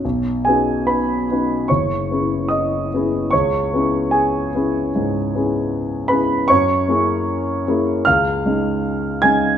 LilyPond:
\new Staff \with { instrumentName = "Grand piano" } { \time 4/4 \key b \major \tempo 4 = 75 << { r8 <gis' gis''>8 <b' b''>4 <cis'' cis'''>4 <dis'' dis'''>4 | <cis'' cis'''>4 <gis' gis''>2~ <gis' gis''>8 <b' b''>8 | <cis'' cis'''>2 <eis'' eis'''>4. <gis'' gis'''>8 | } \\ { b,,8 <cis' dis' fis' b'>4 <cis' dis' fis' b'>8 fis,,8 <b cis' e' gis'>4 <b cis' e' gis'>8 | cis,8 <b cis' e' gis'>4 <b cis' e' gis'>8 gis,8 <b cis' e' gis'>4 <b cis' e' gis'>8 | fis,8 <ais cis' e' gis'>4 <ais cis' e' gis'>8 cis,8 <gis cis' dis' gis'>4 <gis cis' dis' gis'>8 | } >> }